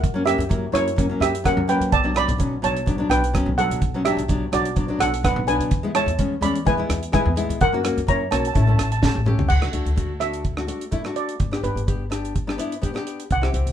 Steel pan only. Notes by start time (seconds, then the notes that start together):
Already playing: A#4 F#5
0.26 G4 E5
0.73 E4 C#5
1.21 G4 E5
1.46 A#4 F#5
1.69 B4 G5
1.92 D5 A5
2.17 D5 B5
2.64 C#5 A5
3.10 B4 G5
3.58 A4 F#5
4.05 G4 E5
4.53 F#4 D5
5.00 A4 F#5
5.25 B4 F#5
5.48 B4 G#5
5.95 C#5 A5
6.42 D5 B5
6.67 B4 G#5
7.14 B4 G#5
7.61 A#4 F#5
8.09 C#5 A#5
8.31 C#5 A5
8.40 A5
8.47 A5
8.54 A5
8.62 A5
8.69 A5
8.77 A5
8.83 A5
8.92 A5
8.97 A5
9.05 A5
9.49 F#5
10.20 E5
11.16 D5
11.64 B4
13.32 F#5